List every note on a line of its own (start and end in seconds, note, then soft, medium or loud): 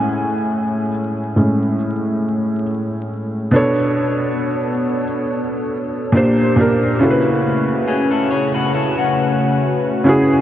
0.00 0.88 A2 medium
0.00 0.88 G#3 soft
0.00 0.88 C#4 medium
0.00 2.62 G#5 medium
1.36 1.75 A2 soft
1.36 1.75 G#3 soft
1.36 1.75 C#4 medium
3.51 5.02 B2 medium
3.51 5.03 B3 medium
3.51 6.11 B3 medium
3.51 6.97 D4 medium
3.51 5.03 D4 medium
3.51 6.11 A4 medium
3.51 5.04 A4 medium
3.51 6.11 C#5 medium
3.56 5.05 C#5 medium
6.12 6.50 A#2 medium
6.12 6.51 A#3 medium
6.12 7.00 A#3 medium
6.12 6.52 D4 medium
6.12 7.00 G4 medium
6.12 6.52 G4 medium
6.12 7.00 C5 medium
6.17 6.53 C5 loud
6.56 6.94 A#2 medium
6.56 6.95 A#3 medium
6.56 6.95 D4 medium
6.56 6.96 G4 medium
6.60 6.96 A#4 medium
6.99 8.50 C#3 medium
6.99 10.41 C#3 medium
6.99 10.41 A3 medium
6.99 10.41 C#4 medium
6.99 8.51 C#4 medium
6.99 8.51 E4 medium
6.99 10.41 F#4 medium
6.99 8.52 F#4 medium
6.99 10.41 B4 medium
7.04 7.09 A4 medium
7.11 8.56 B4 medium
7.88 8.10 C#4 medium
7.88 8.10 G#4 medium
8.11 8.30 E4 medium
8.11 8.29 A4 medium
8.30 8.54 G#4 medium
8.30 8.53 C#5 medium
8.54 8.73 F#4 medium
8.54 8.73 B4 medium
8.74 8.97 E4 medium
8.74 8.97 A4 medium
8.98 10.25 C#4 medium
8.98 10.24 F#4 medium
10.04 10.41 C#3 medium
10.04 10.41 C#4 medium
10.04 10.41 E4 medium
10.04 10.41 F#4 medium
10.09 10.41 G#4 loud